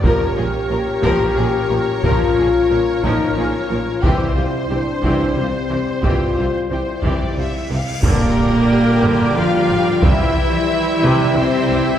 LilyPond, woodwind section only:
\new Staff \with { instrumentName = "Woodwind section" } { \time 3/4 \key c \major \tempo 4 = 90 << { <des' bes'>2.~ | <des' bes'>2. | <c' c''>2.~ | <c' c''>2~ <c' c''>8 r8 |
\key g \dorian <d' bes'>2. | <e' c''>2. | } \\ { <bes f'>2.~ | <bes f'>2. | <g g'>2.~ | <g g'>2~ <g g'>8 r8 |
<g g'>2.~ | <g g'>2. | } >> }